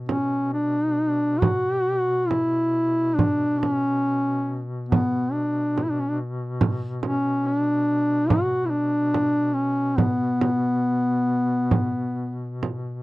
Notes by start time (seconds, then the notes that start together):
Already playing: B2
0.09 C#4, frame drum
0.53 D4
1.40 F#4, frame drum
2.28 E4, frame drum
3.15 D4, frame drum
3.60 C#4, frame drum
4.89 B3, frame drum
5.33 D4
5.78 frame drum
5.84 E4
5.91 D4
6.00 C#4
6.09 D4
6.61 frame drum
7.03 C#4, frame drum
7.46 D4
8.30 F#4, frame drum
8.66 E4
8.70 D4
9.14 frame drum
9.54 C#4
9.97 B3, frame drum
10.41 frame drum
11.71 frame drum
12.63 frame drum